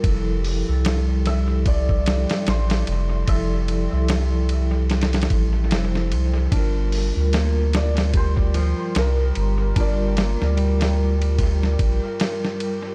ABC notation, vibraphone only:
X:1
M:4/4
L:1/16
Q:"Swing 16ths" 1/4=74
K:Gdor
V:1 name="Vibraphone"
[F,EA]3 [F,EA]12- [F,EA] | [F,EA]3 [F,EA]8 z [F,Ec]4 | [G,FB]3 [G,FB]12- [G,FB] | [G,FB]3 [G,FB]8 [G,FB]4- [G,FB] |]